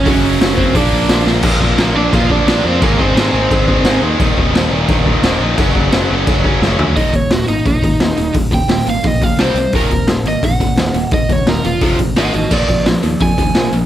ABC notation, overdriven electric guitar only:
X:1
M:4/4
L:1/8
Q:1/4=173
K:Bbmix
V:1 name="Overdriven electric guitar"
[_D_d]3 [Cc] [=D=d]3 z | z3 [Dd] [Ff] [Dd]2 [Cc] | [B,B] [Cc] [Cc]4- [Cc] z | z8 |
z8 | e _d _G E E4 | z g g f e f c2 | B2 z e _g4 |
e _d B F2 z [e_g] [_Ge] | d2 z2 a4 |]